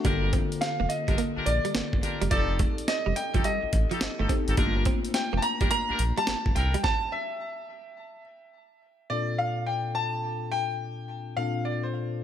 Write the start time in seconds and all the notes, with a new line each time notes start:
0.04 G1 D3 G3 A#3 D4 F4 G4 A4 A#4, kick, closed hi-hat
0.23 muted clean electric guitar stroke
0.33 C4, kick, closed hi-hat
0.52 closed hi-hat
0.61 F5, snare, closed hi-hat
0.80 F1 A#3
0.89 D#5, muted clean electric guitar stroke, closed hi-hat
1.08 G1 G3 D4 F4 G4 A#4, kick, closed hi-hat
1.18 A#3, closed hi-hat
1.36 A#1 D4 F4 G4 A#4, muted clean electric guitar stroke
1.46 A#1 D5, closed hi-hat
1.65 G3, closed hi-hat
1.75 G1 A#3, snare, closed hi-hat
1.93 G1, kick
2.03 D4 F4 G4 A#4, muted clean electric guitar stroke, closed hi-hat
2.21 F#1 G3, closed hi-hat
2.30 F1 F3 C4 D#4 F4 G4 A4 D5, kick, closed hi-hat
2.50 muted clean electric guitar stroke
2.59 A3, kick, closed hi-hat
2.78 closed hi-hat
2.88 D#5, snare, closed hi-hat
3.06 F1 G3
3.16 G5, muted clean electric guitar stroke, closed hi-hat
3.34 G1 F3 D#4 F4 G4 A4, kick, closed hi-hat
3.44 G3 D#5, closed hi-hat
3.63 A1, muted clean electric guitar stroke
3.73 A1, kick, closed hi-hat
3.91 F3 D#4 F4 G4 A4, closed hi-hat
4.01 G1, muted clean electric guitar stroke, snare, closed hi-hat
4.19 G1 A3 D#4 F4 G4 A4
4.29 C4 D#4 G4 A4, kick, closed hi-hat
4.47 G#1 D#4 F4 G4 A4, closed hi-hat
4.57 G1 G3 A3 A#3 D4 F4 G4 A#4, kick, closed hi-hat
4.76 muted clean electric guitar stroke
4.85 C4, kick, closed hi-hat
5.05 closed hi-hat
5.14 G5, snare, closed hi-hat
5.33 F1 A#3
5.37 A5
5.42 A#5, muted clean electric guitar stroke, closed hi-hat
5.61 G1 G3 D4 F4 G4 A#4, kick, closed hi-hat
5.71 A#3 A#5, closed hi-hat
5.89 A#1 D4 F4 G4 A#4, muted clean electric guitar stroke
5.99 A#1, closed hi-hat
6.17 G3 A5, closed hi-hat
6.27 G1 A#3, snare, closed hi-hat
6.46 G1, kick
6.55 C2 D4 E4 A4 A#4 G5, muted clean electric guitar stroke, closed hi-hat
6.74 G3, closed hi-hat
6.84 A5, kick, snare
7.12 E5
9.10 A#2 C4 D4 F4 A4 D5
9.38 F5
9.67 G5
9.95 A5
10.52 G5
11.36 A#2 C4 D4 F4 A4 F5
11.65 D5
11.83 C5